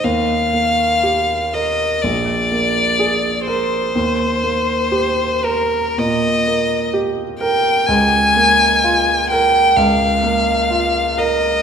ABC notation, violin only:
X:1
M:4/4
L:1/8
Q:1/4=62
K:Ebmix
V:1 name="Violin"
f3 e =d3 c- | c3 B e2 z g | [K:Bbdor] a3 g f3 e |]